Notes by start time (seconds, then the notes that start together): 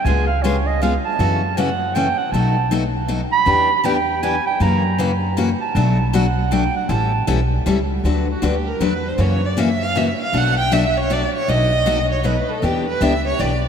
0.05 C#2 C#3 G#3 B3 F4 G#4 G#5
0.27 F5
0.43 C#3 G#3 B3 F4 G#4 C#5
0.66 D#5
0.82 C#3 G#3 B3 F4 G#4 F5
1.05 A5
1.19 F#2 C#3 E3 A3 C#4 F#4
1.57 C#3 E3 A3 C#4 F#4 F#5
1.94 C#3 E3 A3 C#4 F#4 G5
2.18 F#5
2.32 B1 B2 F#3 A3 D#4 F#4 A5
2.71 B2 F#3 A3 D#4 F#4
3.08 B2 F#3 A3 D#4 F#4
3.32 B5
3.46 E2 E3 B3 D4 G4
3.84 E3 B3 D4 G4 G5
4.23 E3 B3 D4 G4 G#5
4.47 G5
4.60 F#2 C#3 E3 A#3 C#4 F#4 A#5
4.98 C#3 E3 A#3 C#4 F#4
5.37 C#3 E3 A#3 C#4 F#4
5.61 A5
5.75 B1 B2 F#3 A3 D4 F#4
6.13 B2 F#3 A3 D4 F#4 F#5
6.51 B2 F#3 A3 D4 F#4 G5
6.76 F#5
6.89 A1 E3 G3 C#4 E4 A4 A5
7.27 B1 E3 G3 C#4 E4 A4
7.66 C#2 E3 G3 C#4 E4 A4
8.04 D2 D3 F#3 A3 D4 F#4 B4
8.31 F#4
8.42 D2 D3 F#3 A3 D4 F#4 G4 B4
8.67 A#4
8.80 E2 D3 F#3 A3 D4 F#4 B4
9.08 C5
9.18 F#2 C#3 E3 A#3 C#4 F#4 C#5
9.46 D5
9.57 C#3 E3 A#3 C#4 F#4 E5
9.83 F5
9.95 C#3 E3 A#3 C#4 F#4 E5
10.21 F5
10.33 B1 B2 F#3 A3 D4 F#4
10.37 F#5
10.59 G5
10.72 B2 F#3 A3 D4 F#4 E5
10.97 C#5
11.10 B2 F#3 A3 D4 F#4 D5
11.35 C#5
11.48 B1 B2 F#3 A3 D#4 F#4 D#5
11.86 B2 F#3 A3 D#4 F#4
12.12 C#5
12.23 B2 F#3 A3 D#4 F#4 B4
12.50 A4
12.62 E2 E3 B3 D4 G4
12.88 B4
13.01 C#2 E3 B3 D4 G4 E5
13.27 C#5
13.39 B1 E3 B3 D4 G4 D5